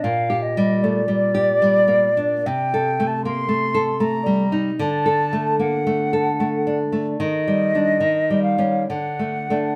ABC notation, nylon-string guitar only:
X:1
M:3/4
L:1/8
Q:1/4=75
K:Gm
V:1 name="Nylon-string guitar"
(3B,, G G, (3A, G, G (3G, B, D | (3C, A A, (3B, A, A (3A, G, E | (3D, A A, (3B, A, A (3A, D A, | (3E, G, [G,D] (3E, G, [G,_D] (3=D, A, [A,=D] |]